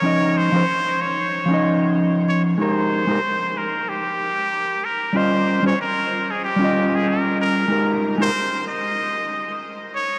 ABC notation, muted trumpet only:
X:1
M:4/4
L:1/16
Q:"Swing 16ths" 1/4=94
K:Ab
V:1 name="Muted trumpet"
d2 c4 d6 z2 d2 | c6 B2 G6 B2 | c3 d B3 A G3 A B2 B2- | B z2 c3 e6 z2 d2 |]